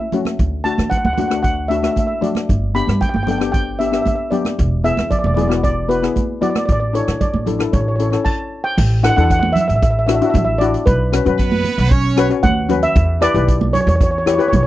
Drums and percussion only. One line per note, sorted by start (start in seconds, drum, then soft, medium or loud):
0.12 closed hi-hat medium
0.12 low conga medium
0.25 cross-stick medium
0.25 closed hi-hat medium
0.25 high conga medium
0.39 kick medium
0.39 closed hi-hat soft
0.65 closed hi-hat medium
0.78 cross-stick medium
0.78 closed hi-hat soft
0.78 high conga medium
0.91 kick medium
0.91 closed hi-hat soft
0.91 low conga medium
1.05 high conga medium
1.18 closed hi-hat medium
1.18 high conga medium
1.18 low conga medium
1.31 cross-stick medium
1.31 closed hi-hat medium
1.44 kick loud
1.44 closed hi-hat medium
1.71 closed hi-hat medium
1.84 cross-stick medium
1.84 closed hi-hat medium
1.96 kick medium
1.96 closed hi-hat medium
1.96 high conga medium
2.22 closed hi-hat medium
2.22 low conga medium
2.35 cross-stick medium
2.35 closed hi-hat medium
2.35 high conga medium
2.49 kick medium
2.49 closed hi-hat medium
2.76 closed hi-hat medium
2.87 cross-stick medium
2.87 closed hi-hat medium
2.87 high conga medium
3.01 kick medium
3.01 closed hi-hat medium
3.01 low conga medium
3.14 high conga medium
3.27 closed hi-hat medium
3.27 low conga medium
3.41 cross-stick medium
3.41 closed hi-hat medium
3.54 kick loud
3.54 closed hi-hat medium
3.80 closed hi-hat medium
3.93 cross-stick medium
3.93 closed hi-hat medium
4.06 kick medium
4.06 closed hi-hat medium
4.06 high conga medium
4.32 closed hi-hat medium
4.32 low conga medium
4.45 cross-stick medium
4.45 closed hi-hat medium
4.45 high conga medium
4.59 kick medium
4.59 closed hi-hat medium
4.85 closed hi-hat medium
4.97 cross-stick medium
4.97 closed hi-hat soft
4.97 high conga medium
5.11 kick medium
5.11 closed hi-hat medium
5.11 low conga medium
5.24 high conga medium
5.37 closed hi-hat medium
5.37 high conga medium
5.37 low conga medium
5.51 cross-stick medium
5.51 closed hi-hat medium
5.64 kick loud
5.64 closed hi-hat medium
5.91 closed hi-hat medium
6.04 cross-stick medium
6.04 closed hi-hat medium
6.16 kick medium
6.16 closed hi-hat medium
6.16 high conga medium
6.42 closed hi-hat medium
6.42 low conga medium
6.55 cross-stick medium
6.55 closed hi-hat medium
6.55 high conga medium
6.69 kick loud
6.69 closed hi-hat medium
6.95 closed hi-hat medium
7.08 cross-stick medium
7.08 closed hi-hat medium
7.21 kick medium
7.21 closed hi-hat medium
7.21 low conga medium
7.34 high conga medium
7.47 closed hi-hat medium
7.47 low conga medium
7.60 cross-stick medium
7.60 closed hi-hat medium
7.73 kick loud
7.73 closed hi-hat medium
7.99 closed hi-hat medium
8.13 cross-stick medium
8.13 closed hi-hat medium
8.25 kick medium
8.25 crash medium
8.78 kick loud
8.78 crash loud
9.04 cross-stick loud
9.04 closed hi-hat medium
9.17 closed hi-hat medium
9.30 kick medium
9.30 closed hi-hat medium
9.43 high conga medium
9.56 closed hi-hat medium
9.56 low conga medium
9.70 closed hi-hat medium
9.82 kick loud
9.82 closed hi-hat medium
10.09 cross-stick loud
10.09 closed hi-hat medium
10.22 closed hi-hat medium
10.34 kick medium
10.34 closed hi-hat medium
10.34 high conga medium
10.34 low conga medium
10.61 closed hi-hat medium
10.74 closed hi-hat medium
10.87 kick loud
10.87 closed hi-hat medium
11.13 cross-stick medium
11.13 closed hi-hat medium
11.26 closed hi-hat medium
11.39 kick medium
11.39 closed hi-hat medium
11.52 high conga medium
11.64 closed hi-hat medium
11.64 low conga medium
11.78 closed hi-hat medium
11.91 kick loud
11.91 closed hi-hat medium
12.17 cross-stick medium
12.17 closed hi-hat medium
12.30 closed hi-hat medium
12.43 kick medium
12.43 closed hi-hat medium
12.43 high conga medium
12.43 low conga medium
12.69 closed hi-hat medium
12.69 low conga medium
12.82 closed hi-hat medium
12.95 kick loud
12.95 closed hi-hat medium
13.22 cross-stick loud
13.22 closed hi-hat medium
13.35 closed hi-hat medium
13.48 kick medium
13.48 closed hi-hat medium
13.61 high conga medium
13.74 closed hi-hat medium
13.74 low conga medium
13.88 closed hi-hat medium
14.01 kick loud
14.01 closed hi-hat medium
14.27 cross-stick medium
14.27 closed hi-hat medium
14.40 closed hi-hat medium
14.53 kick medium
14.53 closed hi-hat medium
14.53 high conga medium
14.53 low conga medium